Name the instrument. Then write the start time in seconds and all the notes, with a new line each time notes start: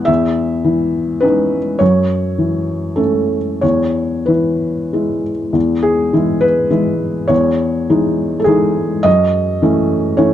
felt piano
Already playing: E2 E3 B3 E4 F#5 G#5
0.05 E2 E5
0.64 E3
1.20 C#4 D#4 B4
1.79 F#2 C#5
2.38 E3
2.96 A3 C#4 A4
3.61 E2 C#5
4.26 E3 B4
4.93 G#3 E4
5.53 E2
5.83 G#4
6.13 E3 G#3 E4
6.41 B4
6.70 E3 G#3 E4
7.28 E2 C#5
7.89 E3 G#3 D#4
8.40 A4
8.44 E3 G#3 D#4 G#4
9.03 F#2 D#5
9.62 E3 A3 C#4
10.17 E3 A3 C#4 C#5